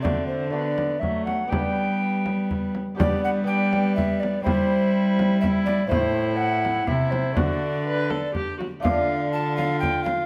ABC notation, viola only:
X:1
M:3/4
L:1/8
Q:1/4=123
K:G
V:1 name="Viola"
C2 B,2 A,2 | B,4- B, z | B,2 B,4 | E4 E2 |
E4 E2 | F2 B A G F | =F2 F4 |]